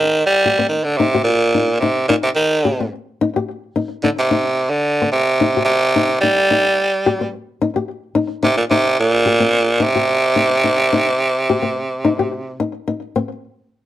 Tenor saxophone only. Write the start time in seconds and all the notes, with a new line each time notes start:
Already playing: D#3
0.26 G3
0.69 D#3
0.84 D3
0.97 C3
1.24 A#2
1.80 C3
2.08 A#2
2.23 C3
2.36 D#3
4.04 D3
4.19 C3
4.70 D3
5.12 C3
5.65 C3
6.21 G3
8.44 C3
8.57 A#2
8.71 C3
9.00 A#2
9.83 C3